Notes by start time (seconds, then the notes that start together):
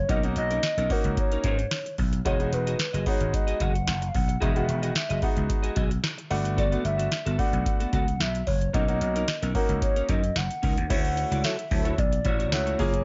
0.09 B1 A#3 C#4 D#4 F#4 A#4 D#5, kick, closed hi-hat
0.23 A#3 C#4 D#4 F#4, closed hi-hat
0.36 B1 D#5, muted clean electric guitar stroke, closed hi-hat
0.51 C#4 D#4 A#4, closed hi-hat
0.63 muted clean electric guitar stroke, snare, closed hi-hat
0.77 B1 C#4 D#4 A#4, closed hi-hat
0.90 A#3 C#4 D#4 F#4 A#4, muted clean electric guitar stroke, kick, open hi-hat
1.04 C#2, muted clean electric guitar stroke, closed hi-hat
1.17 C#5, muted clean electric guitar stroke, kick, closed hi-hat
1.32 C#4 D#4 A#4, closed hi-hat
1.44 G#2 C#4 D#4 A#4, kick, closed hi-hat
1.59 muted clean electric guitar stroke, closed hi-hat
1.71 muted clean electric guitar stroke, snare, closed hi-hat
1.86 muted clean electric guitar stroke, closed hi-hat
1.98 B1, kick, open hi-hat
2.13 muted clean electric guitar stroke, closed hi-hat
2.25 E1 G#3 B3 D#4 F#4 G#4 C#5 D#5, kick, closed hi-hat
2.39 G#3 B3 D#4 F#4, closed hi-hat
2.52 E1 B4, muted clean electric guitar stroke, closed hi-hat
2.67 F#4 G#4 D#5, closed hi-hat
2.79 muted clean electric guitar stroke, snare, closed hi-hat
2.93 F#1 F#4 G#4 D#5, closed hi-hat
3.06 G#3 B3 D#4 F#4 C#5, muted clean electric guitar stroke, kick, open hi-hat
3.21 G#1, muted clean electric guitar stroke, closed hi-hat
3.33 D#5, muted clean electric guitar stroke, kick, closed hi-hat
3.47 F#4 G#4 D#5, closed hi-hat
3.60 F#1 F#4 G#4 D#5 F#5, kick, closed hi-hat
3.74 muted clean electric guitar stroke, closed hi-hat
3.87 F#1, muted clean electric guitar stroke, snare, closed hi-hat
4.02 muted clean electric guitar stroke, closed hi-hat
4.09 F5
4.14 B1 F#5, kick, open hi-hat
4.28 muted clean electric guitar stroke, closed hi-hat
4.40 E1 G#3 B3 D#4 F#4 G#4 D#5 E5, kick, closed hi-hat
4.55 D#3 G#3 B3 F#4, closed hi-hat
4.67 E1, muted clean electric guitar stroke, closed hi-hat
4.82 F#4 G#4 D#5, closed hi-hat
4.95 E5, muted clean electric guitar stroke, snare, closed hi-hat
5.09 F#1 F#4 G#4 D#5, closed hi-hat
5.22 G#3 B3 D#4 F#4, muted clean electric guitar stroke, kick, open hi-hat
5.36 C#2, muted clean electric guitar stroke, closed hi-hat
5.49 muted clean electric guitar stroke, kick, closed hi-hat
5.63 F#4 G#4 D#5, closed hi-hat
5.75 B1 F#4 G#4 D#5, kick, closed hi-hat
5.90 muted clean electric guitar stroke, closed hi-hat
6.03 muted clean electric guitar stroke, snare, closed hi-hat
6.18 muted clean electric guitar stroke, closed hi-hat
6.31 G1 A3 B3 D4 F#4, open hi-hat
6.44 muted clean electric guitar stroke, closed hi-hat
6.57 B3 F#4 A4 D5, kick, closed hi-hat
6.72 A3 B3 D4 F#4, closed hi-hat
6.84 G1 E5, muted clean electric guitar stroke, closed hi-hat
6.98 B3 F#4 A4, closed hi-hat
7.11 muted clean electric guitar stroke, snare, closed hi-hat
7.26 G1 B3 F#4 A4, closed hi-hat
7.38 A3 B3 D4 F#4 F#5, muted clean electric guitar stroke, kick, open hi-hat
7.53 B1, muted clean electric guitar stroke, closed hi-hat
7.66 muted clean electric guitar stroke, kick, closed hi-hat
7.80 B3 F#4 A4, closed hi-hat
7.93 C#2 B3 F#4 A4 F#5, kick, closed hi-hat
8.07 muted clean electric guitar stroke, closed hi-hat
8.20 B1 E5, muted clean electric guitar stroke, snare, closed hi-hat
8.34 muted clean electric guitar stroke, closed hi-hat
8.47 F#1 C#5, kick, open hi-hat
8.61 muted clean electric guitar stroke, closed hi-hat
8.73 B1 A#3 C#4 D#4 F#4 A#4 D#5, kick, closed hi-hat
8.88 A#3 C#4 D#4 F#4, closed hi-hat
9.01 B1 D#5, muted clean electric guitar stroke, closed hi-hat
9.15 C#4 D#4 A#4, closed hi-hat
9.28 muted clean electric guitar stroke, snare, closed hi-hat
9.42 B1 C#4 D#4 A#4, closed hi-hat
9.55 A#3 C#4 D#4 F#4 A#4, muted clean electric guitar stroke, kick, open hi-hat
9.69 C#2, muted clean electric guitar stroke, closed hi-hat
9.82 C#5, muted clean electric guitar stroke, kick, closed hi-hat
9.96 C#4 D#4 A#4, closed hi-hat
10.09 F#2 C#4 D#4 A#4 D#5, kick, closed hi-hat
10.23 muted clean electric guitar stroke, closed hi-hat
10.36 F#1 F#5, snare, closed hi-hat
10.50 muted clean electric guitar stroke, closed hi-hat
10.62 C#2 C#4 D#4 A#4, kick, open hi-hat
10.77 D#2, muted clean electric guitar stroke, closed hi-hat
10.90 D2 A3 C#4 E4 F#4 C#5 F#5, kick, closed hi-hat, crash
11.05 closed hi-hat
11.17 muted clean electric guitar stroke, closed hi-hat
11.31 C#2 E4 F#4 D5, closed hi-hat
11.44 F#3 E4 F#4 A4 C#5 E5, snare, closed hi-hat, tambourine
11.58 muted clean electric guitar stroke, closed hi-hat
11.71 D2 F#3 E4 A4, muted clean electric guitar stroke, kick, open hi-hat
11.85 E4 F#4 C#5, closed hi-hat
11.98 B1 D5, muted clean electric guitar stroke, kick, closed hi-hat
12.12 muted clean electric guitar stroke, closed hi-hat
12.24 A1 E4 F#4 C#5, kick, closed hi-hat
12.39 E4 F#4 C#5, closed hi-hat
12.52 C#2 A3 C#4 E4 F#4 C#5, snare, closed hi-hat, tambourine
12.66 E4 F#4 C#5, closed hi-hat
12.78 F#1 A#3 C#4 F4 G#4, kick, open hi-hat
12.93 muted clean electric guitar stroke, closed hi-hat